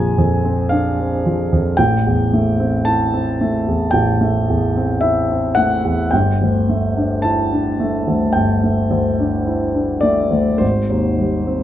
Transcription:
0.00 1.75 A#1 soft
0.00 0.18 F2 soft
0.00 1.26 F3 soft
0.00 0.45 C4 soft
0.00 0.71 D4 soft
0.00 0.70 G#5 medium
0.00 1.80 A#5 medium
0.18 0.61 F2 soft
0.45 0.88 C4 soft
0.69 1.14 D4 soft
0.69 1.77 F5 medium
0.99 1.41 C4 soft
1.26 1.68 F3 soft
1.52 1.79 F2 soft
1.77 3.90 A1 soft
1.77 2.86 G5 medium
2.07 2.49 E2 soft
2.33 2.76 A3 soft
2.60 3.03 C4 soft
2.85 3.30 E4 soft
2.85 3.93 A5 medium
3.14 3.56 C4 soft
3.41 3.83 A3 soft
3.68 4.11 E2 soft
3.91 6.09 A1 soft
3.91 5.01 G5 medium
4.21 4.65 A3 soft
4.50 4.92 E2 soft
4.77 5.19 C4 soft
5.01 5.46 E4 soft
5.01 5.56 E5 medium
5.31 5.74 C4 soft
5.55 6.02 A3 soft
5.55 6.12 F#5 medium
5.85 6.13 E2 soft
6.11 8.34 G1 soft
6.11 7.25 G5 medium
6.42 6.87 D2 soft
6.69 7.15 A3 soft
6.97 7.43 D4 soft
7.22 7.70 E4 soft
7.22 8.36 A5 medium
7.52 7.98 D4 soft
7.80 8.26 A3 soft
8.08 8.53 D2 soft
8.33 10.57 G1 soft
8.33 10.02 G5 medium
8.64 9.09 A3 soft
8.91 9.36 D2 soft
9.19 9.65 D4 soft
9.47 9.93 E4 soft
9.75 10.21 D4 soft
10.01 10.50 A3 soft
10.01 10.60 D5 medium
10.31 10.61 D2 soft
10.58 11.63 G#1 soft
10.58 11.63 C5 medium
10.89 11.37 D#2 soft
11.18 11.63 G3 soft
11.47 11.63 C4 soft

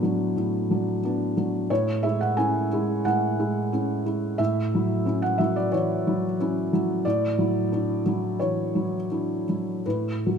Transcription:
0.00 0.32 A2 soft
0.00 0.03 F#3 soft
0.00 0.33 F#3 soft
0.00 1.04 B3 soft
0.00 0.03 D4 soft
0.00 0.33 D4 soft
0.00 1.02 B4 medium
0.36 1.66 A2 soft
0.71 1.00 F#3 soft
0.71 1.01 D4 soft
1.04 1.34 B3 soft
1.04 1.34 D4 soft
1.37 1.67 F#3 soft
1.37 1.67 D4 soft
1.70 3.01 A2 soft
1.70 2.03 C#5 medium
2.03 2.34 G#3 soft
2.03 2.34 E4 soft
2.03 2.20 E5 medium
2.21 2.37 F#5 medium
2.37 2.68 C#4 soft
2.37 2.68 E4 soft
2.37 3.04 G#5 medium
2.73 3.02 G#3 soft
2.73 3.02 E4 soft
3.05 4.36 A2 soft
3.05 4.39 F#5 medium
3.39 3.69 G#3 soft
3.39 3.69 E4 soft
3.73 4.03 C#4 soft
3.73 4.03 E4 soft
4.06 4.36 G#3 soft
4.06 4.36 E4 soft
4.38 5.68 A2 medium
4.38 5.22 E5 medium
4.75 5.04 F#3 soft
4.75 5.04 E4 soft
5.05 5.36 C#4 soft
5.05 5.36 E4 soft
5.22 5.39 F#5 medium
5.38 5.69 F#3 soft
5.38 5.69 E4 soft
5.38 5.55 E5 medium
5.56 5.72 D5 medium
5.72 6.25 E3 soft
5.72 6.71 C#5 medium
6.07 6.36 F#3 soft
6.07 6.36 E4 soft
6.40 6.69 C#4 soft
6.40 6.70 E4 soft
6.73 7.02 F#3 soft
6.73 7.03 E4 soft
7.05 8.36 A2 soft
7.05 8.40 D5 medium
7.38 7.69 F#3 soft
7.38 7.69 E4 soft
7.72 8.02 D4 soft
7.72 8.03 E4 soft
8.06 8.36 F#3 soft
8.06 8.37 E4 soft
8.40 8.96 E3 soft
8.40 9.85 C#5 medium
8.75 9.06 F#3 soft
8.75 9.06 E4 soft
9.12 9.44 D4 soft
9.12 9.44 E4 soft
9.49 9.82 F#3 soft
9.49 9.82 E4 soft
9.86 10.38 A2 soft
9.86 10.38 B4 medium
10.26 10.38 F#3 soft
10.26 10.38 F#4 soft

